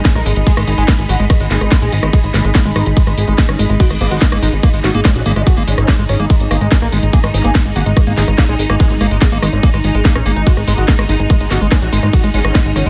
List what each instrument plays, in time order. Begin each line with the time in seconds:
Already playing: synth drone D#4, ambient pad G#4 D#5 B5
0.05 analog synth lead G#3, kick, snare, closed hi-hat, ride
0.15 analog synth bass A#1, acid bass G#3, analog synth lead A#4, cross-stick, closed hi-hat
0.26 analog synth bass G#1, acid bass G#3, analog synth lead G#3, open hi-hat
0.36 analog synth bass G#1, analog synth lead G#3, closed hi-hat
0.47 acid bass G#3, analog synth lead G#4, kick, closed hi-hat, ride
0.57 analog synth bass G#1, acid bass G#3, analog synth lead G#3, cross-stick, closed hi-hat
0.67 analog synth bass G#1, analog synth lead G#3, open hi-hat
0.78 analog synth bass G#1, acid bass G#3, analog synth lead G#4, closed hi-hat
0.88 acid bass G#3, analog synth lead G#3, kick, cross-stick, snare, closed hi-hat, ride
0.99 analog synth bass G#1, analog synth lead G#3, closed hi-hat
1.09 analog synth bass G#1, acid bass G#3, analog synth lead F#4, open hi-hat
1.20 analog synth bass G#1, acid bass G#3, analog synth lead G#3, closed hi-hat
1.30 analog synth lead G#3, kick, cross-stick, closed hi-hat, ride
1.40 analog synth bass G#1, acid bass G#3, analog synth lead G#3, closed hi-hat
1.51 analog synth bass G#1, acid bass G#3, analog synth lead G#4, snare, open hi-hat
1.61 analog synth bass G#1, analog synth lead G#3, cross-stick, closed hi-hat
1.72 acid bass G#3, analog synth lead G#3, kick, snare, open hi-hat, ride
1.82 analog synth bass A#1, acid bass G#3, analog synth lead G#4, closed hi-hat
1.92 analog synth bass G#1, analog synth lead G#3, open hi-hat
2.03 analog synth bass G#1, acid bass G#3, analog synth lead G#3, cross-stick, closed hi-hat
2.13 acid bass G#3, analog synth lead G#4, kick, closed hi-hat, ride
2.24 analog synth bass G#1, analog synth lead G#3, closed hi-hat
2.34 analog synth bass G#1, acid bass G#3, analog synth lead G#3, cross-stick, snare, open hi-hat
2.45 analog synth bass G#1, acid bass G#3, closed hi-hat
2.55 analog synth lead G#3, kick, snare, closed hi-hat, ride
2.65 analog synth bass G#1, acid bass G#3, analog synth lead G#3, closed hi-hat
2.76 analog synth bass G#1, acid bass G#3, analog synth lead D#4, cross-stick, open hi-hat
2.86 analog synth bass G#1, analog synth lead G#3, closed hi-hat
2.97 acid bass G#3, analog synth lead G#3, kick, closed hi-hat, ride
3.07 analog synth bass G#1, acid bass G#3, cross-stick, closed hi-hat
3.17 analog synth bass G#1, analog synth lead G#3, open hi-hat
3.28 analog synth bass G#1, acid bass G#3, analog synth lead G#3, closed hi-hat
3.38 acid bass G#3, analog synth lead G#3, kick, snare, open hi-hat, ride
3.49 analog synth bass G#1, analog synth lead C#4, cross-stick, closed hi-hat
3.59 analog synth bass G#1, acid bass G#3, analog synth lead G#3, open hi-hat
3.70 analog synth bass G#1, acid bass G#3, analog synth lead G#3, closed hi-hat
3.80 acid bass G#3, synth drone D#4, analog synth lead F#4, kick, closed hi-hat, crash, ride
3.90 analog synth bass G#1, analog synth lead G#3, cross-stick, closed hi-hat
4.01 analog synth bass G#1, analog synth lead G#3, acid bass A#3, wobble bass B3, open hi-hat
4.11 analog synth bass G#1, acid bass G#3, analog synth lead F#4, closed hi-hat
4.22 analog synth lead G#3, kick, snare, closed hi-hat, ride
4.32 analog synth bass G#1, analog synth lead G#3, acid bass A#3, cross-stick, closed hi-hat
4.42 analog synth bass G#1, acid bass G#3, analog synth lead D#4, open hi-hat
4.47 ambient pad A#5
4.53 analog synth bass G#1, analog synth lead G#3, closed hi-hat
4.63 analog synth lead G#3, acid bass A#3, kick, cross-stick, closed hi-hat, ride
4.74 analog synth bass G#1, analog synth lead G#3, acid bass G#3, closed hi-hat
4.84 analog synth bass G#1, analog synth lead F#4, snare, open hi-hat
4.95 analog synth bass G#1, analog synth lead G#3, acid bass A#3, closed hi-hat
5.05 analog synth lead G#3, acid bass G#3, wobble bass C#4, kick, cross-stick, snare, open hi-hat, ride
5.15 analog synth bass A#1, wobble bass C#4, analog synth lead F#4, closed hi-hat
5.26 analog synth bass G#1, analog synth lead G#3, acid bass A#3, wobble bass D#4, open hi-hat
5.36 analog synth bass G#1, analog synth lead G#3, acid bass G#3, wobble bass D#4, cross-stick, closed hi-hat
5.47 analog synth lead F#4, kick, closed hi-hat, ride
5.57 analog synth bass G#1, analog synth lead G#3, acid bass A#3, closed hi-hat
5.67 analog synth bass G#1, analog synth lead G#3, acid bass G#3, wobble bass C#4, open hi-hat
5.78 analog synth bass G#1, cross-stick, closed hi-hat
5.88 analog synth lead G#3, acid bass A#3, kick, snare, closed hi-hat, ride
5.99 analog synth bass G#1, acid bass G#3, analog synth lead G#3, closed hi-hat
6.09 analog synth bass G#1, analog synth lead C#4, cross-stick, open hi-hat
6.20 analog synth bass G#1, analog synth lead G#3, acid bass A#3, closed hi-hat
6.30 acid bass G#3, analog synth lead G#3, kick, closed hi-hat, ride
6.40 analog synth bass G#1, closed hi-hat
6.51 analog synth bass G#1, analog synth lead G#3, acid bass A#3, cross-stick, open hi-hat
6.61 analog synth bass G#1, acid bass G#3, analog synth lead G#3, closed hi-hat
6.72 analog synth lead G#3, kick, snare, closed hi-hat, ride
6.82 analog synth bass A#1, acid bass A#3, analog synth lead A#4, cross-stick, closed hi-hat
6.92 analog synth bass G#1, acid bass G#3, analog synth lead G#3, open hi-hat
7.03 analog synth bass G#1, analog synth lead G#3, closed hi-hat
7.13 acid bass A#3, analog synth lead G#4, kick, closed hi-hat, ride
7.24 analog synth bass G#1, acid bass G#3, analog synth lead G#3, cross-stick, closed hi-hat
7.34 analog synth bass G#1, analog synth lead G#3, wobble bass B3, open hi-hat
7.45 analog synth bass G#1, acid bass A#3, analog synth lead G#4, closed hi-hat
7.55 analog synth lead G#3, acid bass G#3, kick, cross-stick, snare, closed hi-hat, ride
7.65 analog synth bass G#1, analog synth lead G#3, closed hi-hat
7.76 analog synth bass G#1, acid bass A#3, analog synth lead F#4, open hi-hat
7.86 analog synth bass G#1, analog synth lead G#3, acid bass G#3, closed hi-hat
7.97 analog synth lead G#3, kick, cross-stick, closed hi-hat, ride
8.07 analog synth bass G#1, analog synth lead G#3, acid bass A#3, closed hi-hat
8.17 analog synth bass G#1, acid bass G#3, analog synth lead G#4, snare, open hi-hat
8.28 analog synth bass G#1, analog synth lead G#3, cross-stick, closed hi-hat
8.38 analog synth lead G#3, acid bass A#3, wobble bass C#4, kick, snare, open hi-hat, ride
8.49 analog synth bass A#1, acid bass G#3, wobble bass C#4, analog synth lead G#4, closed hi-hat
8.59 analog synth bass G#1, analog synth lead G#3, open hi-hat
8.70 analog synth bass G#1, analog synth lead G#3, acid bass A#3, cross-stick, closed hi-hat
8.80 acid bass G#3, wobble bass B3, analog synth lead G#4, kick, closed hi-hat, ride
8.90 analog synth bass G#1, analog synth lead G#3, closed hi-hat
9.01 analog synth bass G#1, analog synth lead G#3, acid bass A#3, cross-stick, open hi-hat
9.11 analog synth bass G#1, acid bass G#3, closed hi-hat
9.22 analog synth lead G#3, kick, snare, closed hi-hat, ride
9.32 analog synth bass G#1, analog synth lead G#3, acid bass A#3, closed hi-hat
9.42 analog synth bass G#1, acid bass G#3, analog synth lead D#4, cross-stick, open hi-hat
9.53 analog synth bass G#1, analog synth lead G#3, wobble bass C#4, closed hi-hat
9.63 analog synth lead G#3, acid bass A#3, wobble bass C#4, kick, closed hi-hat, ride
9.74 analog synth bass G#1, acid bass G#3, cross-stick, closed hi-hat
9.84 analog synth bass G#1, analog synth lead G#3, open hi-hat
9.95 analog synth bass G#1, acid bass G#3, analog synth lead G#3, closed hi-hat
10.05 analog synth lead G#3, acid bass A#3, kick, snare, open hi-hat, ride
10.15 analog synth bass A#1, analog synth lead C#4, cross-stick, closed hi-hat
10.26 analog synth bass G#1, analog synth lead G#3, acid bass A#3, open hi-hat
10.36 analog synth bass G#1, analog synth lead G#3, acid bass D#4, closed hi-hat
10.47 acid bass G#3, analog synth lead F#4, kick, closed hi-hat, ride
10.57 analog synth bass G#1, analog synth lead G#3, cross-stick, closed hi-hat
10.67 analog synth bass G#1, analog synth lead G#3, acid bass G#3, wobble bass B3, open hi-hat
10.78 analog synth bass G#1, acid bass G#3, analog synth lead F#4, closed hi-hat
10.88 analog synth lead G#3, kick, snare, closed hi-hat, ride
10.99 analog synth bass G#1, analog synth lead G#3, acid bass G#3, cross-stick, closed hi-hat
11.09 analog synth bass G#1, acid bass G#3, analog synth lead D#4, open hi-hat
11.13 ambient pad F#5
11.20 analog synth bass G#1, analog synth lead G#3, closed hi-hat
11.30 analog synth lead G#3, acid bass G#3, kick, cross-stick, closed hi-hat, ride
11.40 analog synth bass G#1, analog synth lead G#3, acid bass G#3, closed hi-hat
11.51 analog synth bass G#1, analog synth lead F#4, snare, open hi-hat
11.61 analog synth bass G#1, analog synth lead G#3, acid bass G#3, closed hi-hat
11.72 analog synth lead G#3, acid bass G#3, wobble bass C#4, kick, cross-stick, snare, open hi-hat, ride
11.82 analog synth bass A#1, wobble bass C#4, analog synth lead F#4, closed hi-hat
11.92 analog synth bass G#1, analog synth lead G#3, acid bass G#3, wobble bass D#4, open hi-hat
12.03 analog synth bass G#1, analog synth lead G#3, acid bass G#3, wobble bass D#4, cross-stick
12.13 analog synth lead F#4, kick, closed hi-hat, ride
12.24 analog synth bass G#1, analog synth lead G#3, acid bass G#3, closed hi-hat
12.34 analog synth bass G#1, analog synth lead G#3, acid bass G#3, wobble bass C#4, open hi-hat
12.45 analog synth bass G#1, cross-stick, closed hi-hat
12.55 analog synth lead G#3, acid bass G#3, kick, snare, closed hi-hat, ride
12.65 analog synth bass G#1, analog synth lead G#3, acid bass G#3, closed hi-hat
12.76 analog synth bass G#1, analog synth lead C#4, cross-stick, open hi-hat
12.86 analog synth bass G#1, analog synth lead G#3, acid bass G#3, closed hi-hat